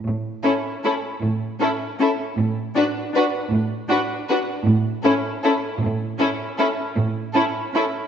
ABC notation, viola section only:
X:1
M:3/4
L:1/8
Q:1/4=155
K:A
V:1 name="Viola section"
z2 C2 C2 | z2 C2 C2 | z2 D2 D2 | z2 D2 D2 |
z2 C2 C2 | z2 C2 C2 | z2 C2 C2 |]